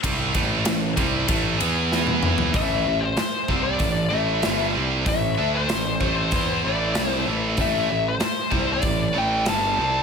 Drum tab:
RD |x-x-x-x-x-x-----|----------------|----------------|----------------|
HH |----------------|o---o---o---o---|o---o---o---o---|o---o---o---o---|
SD |----o-------o---|----o-------o---|----o-------o---|----o-------o---|
T1 |-------------o--|----------------|----------------|----------------|
T2 |--------------o-|----------------|----------------|----------------|
FT |---------------o|----------------|----------------|----------------|
BD |o-o---o-o-------|o-----o-o-------|o-----o-o-------|o-----o-o-------|